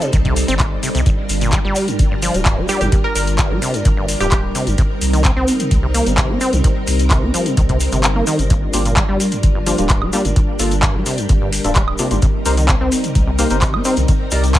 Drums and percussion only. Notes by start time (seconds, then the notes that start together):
0.01 closed hi-hat, shaker
0.13 kick, closed hi-hat, shaker
0.25 kick, closed hi-hat
0.36 open hi-hat, shaker
0.48 closed hi-hat, shaker
0.59 kick, clap, closed hi-hat, shaker
0.83 open hi-hat, shaker
0.95 closed hi-hat, shaker
1.06 kick, closed hi-hat, shaker
1.29 open hi-hat, shaker
1.41 closed hi-hat, shaker
1.52 kick, clap, closed hi-hat, shaker
1.75 open hi-hat, shaker
1.88 closed hi-hat, shaker
1.99 kick, closed hi-hat, shaker
2.22 open hi-hat, shaker
2.34 closed hi-hat, shaker
2.46 kick, clap, closed hi-hat, shaker
2.68 open hi-hat, shaker
2.81 closed hi-hat, shaker
2.92 kick, closed hi-hat, shaker
3.15 open hi-hat, shaker
3.27 closed hi-hat, shaker
3.38 kick, clap, closed hi-hat, shaker
3.62 open hi-hat, shaker
3.74 closed hi-hat, shaker
3.85 kick, closed hi-hat, shaker
4.08 open hi-hat, shaker
4.20 closed hi-hat, shaker
4.32 kick, clap, closed hi-hat, shaker
4.55 open hi-hat, shaker
4.67 closed hi-hat, shaker
4.78 kick, closed hi-hat, shaker
5.01 open hi-hat, shaker
5.13 closed hi-hat, shaker
5.25 kick, clap, closed hi-hat, shaker
5.48 open hi-hat, shaker
5.60 closed hi-hat, shaker
5.71 kick, closed hi-hat, shaker
5.94 open hi-hat, shaker
6.06 closed hi-hat, shaker
6.18 kick, clap, closed hi-hat, shaker
6.41 open hi-hat, shaker
6.53 closed hi-hat, shaker
6.64 kick, closed hi-hat, shaker
6.87 open hi-hat, shaker
6.99 closed hi-hat, shaker
7.11 kick, clap, closed hi-hat, shaker
7.34 open hi-hat, shaker
7.46 closed hi-hat, shaker
7.57 kick, closed hi-hat, shaker
7.69 kick, closed hi-hat
7.80 open hi-hat, shaker
7.92 closed hi-hat, shaker
8.03 clap, closed hi-hat, shaker
8.27 open hi-hat, shaker
8.39 closed hi-hat, shaker
8.50 kick, closed hi-hat, shaker
8.73 open hi-hat, shaker
8.86 closed hi-hat, shaker
8.96 kick, clap, closed hi-hat, shaker
9.20 open hi-hat, shaker
9.32 closed hi-hat, shaker
9.43 kick, closed hi-hat, shaker
9.66 open hi-hat, shaker
9.78 closed hi-hat, shaker
9.89 kick, clap, closed hi-hat, shaker
10.02 high woodblock
10.13 open hi-hat, shaker
10.25 closed hi-hat, shaker
10.36 kick, closed hi-hat, shaker
10.59 open hi-hat, shaker
10.71 closed hi-hat, shaker
10.83 kick, clap, closed hi-hat, shaker
11.06 open hi-hat, shaker
11.18 closed hi-hat, shaker
11.29 kick, closed hi-hat, shaker
11.52 open hi-hat, shaker
11.64 closed hi-hat, shaker
11.76 kick, clap, closed hi-hat, shaker
11.88 high woodblock
11.98 open hi-hat, shaker
12.11 closed hi-hat, shaker
12.22 kick, closed hi-hat, shaker
12.45 open hi-hat, shaker
12.57 closed hi-hat, shaker
12.69 kick, clap, closed hi-hat
12.92 open hi-hat, shaker
13.04 closed hi-hat, shaker
13.15 kick, closed hi-hat, shaker
13.39 open hi-hat, shaker
13.50 closed hi-hat, shaker
13.62 kick, clap, closed hi-hat, shaker
13.74 high woodblock
13.85 open hi-hat, shaker
13.97 closed hi-hat, shaker
14.08 kick, closed hi-hat, shaker
14.31 open hi-hat, shaker
14.44 closed hi-hat, shaker
14.54 kick, clap, closed hi-hat, shaker